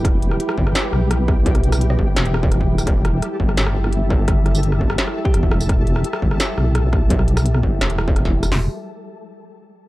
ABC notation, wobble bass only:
X:1
M:4/4
L:1/16
Q:1/4=170
K:Em
V:1 name="Wobble bass" clef=bass
E,,,4 z2 G,,,2 z2 B,,,6- | B,,,6 G,,,2 E,,,6 D,,,2 | E,,,4 z2 G,,,2 G,,,8- | G,,,6 G,,,2 z4 E,,,2 E,,,2- |
E,,,4 z2 G,,,2 z2 B,,,6- | B,,,6 G,,,2 E,,,4- E,,, E,,,3 | E,,,2 z12 z2 |]